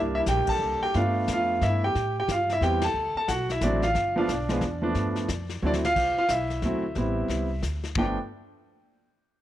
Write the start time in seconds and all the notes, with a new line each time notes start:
Already playing: C2 G3 A#3 D4
0.15 E4 E5
0.26 A#1 G5, kick, snare, hi-hat pedal
0.30 G4
0.47 A5, muted upright bass stroke, kick, crash
0.51 A4
0.59 C2
0.81 G4 G5, muted upright bass stroke
0.94 G2 A3 B3 D4 F4 F5, brush sweep, kick, snare
1.28 F2, kick, snare, hi-hat pedal
1.33 F4 F5
1.61 G2 E4 E5, kick, snare
1.84 G4 G5
1.95 A2, brush sweep, kick, snare
2.20 G4 G5
2.28 G2 F5, kick, snare, hi-hat pedal
2.34 F4
2.49 E4 E5, snare
2.61 E2 G3 B3 C4 E4 G4 G5, kick, snare
2.81 A4 A5, snare, ride
2.94 D2, brush sweep
3.15 A4 A5, muted upright bass stroke
3.28 B1 F#4 F#5, kick, snare, hi-hat pedal
3.49 E4 E5, snare
3.61 A1 F#3 A3 C4 D4 E4 D5, kick, snare, hi-hat pedal
3.82 F4 F5, snare
3.95 G1, brush sweep, kick, snare
4.16 F3 A3 B3 D4 F4 F5
4.28 B1, kick, snare, hi-hat pedal
4.32 D4 D5
4.49 F3 G#3 B3 F4, snare
4.61 E2, kick, snare
4.82 F3 A3 B3 D4
4.95 G2, brush sweep, kick, snare
5.16 snare
5.28 F2, kick, snare, hi-hat pedal
5.49 snare
5.62 D2 F#3 A3 C4 D4 E4
5.67 D5
5.73 snare
5.85 F4 F5, snare
5.96 C2, brush sweep, kick, snare, crash
6.17 F4 F5, muted upright bass stroke
6.29 B1 E4 E5, kick, snare, hi-hat pedal
6.50 snare
6.62 D2 F#3 A3 C4 E4, kick, snare
6.95 A1 G3 B3 C4 E4, brush sweep, kick, snare
7.28 C2, kick, snare
7.62 D2, kick, snare, hi-hat pedal
7.84 snare
7.95 G1 F3 A3 B3 D4 G5, kick, ride bell